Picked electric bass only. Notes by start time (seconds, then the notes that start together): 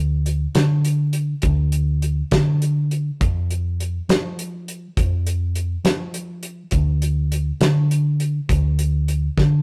Already playing: D2
0.55 D3
1.43 D2
2.32 D3
3.21 F2
4.09 F3
4.97 F2
5.85 F3
6.72 D2
7.61 D3
8.49 D2
9.38 D3